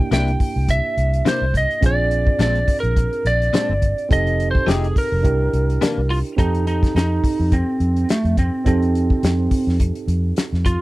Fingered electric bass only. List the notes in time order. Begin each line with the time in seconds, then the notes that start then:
0.11 C2
0.56 C2
0.97 C2
1.42 C2
1.83 A#1
2.39 A#1
2.83 A#1
3.25 A#1
3.69 G1
4.11 F1
4.68 F1
5.12 F1
5.24 C2
5.53 C2
5.98 C2
6.38 F2
6.95 F2
7.40 F2
7.80 F2
8.24 F2
8.66 F2
9.23 F2
9.67 F2
10.08 F2
10.53 F2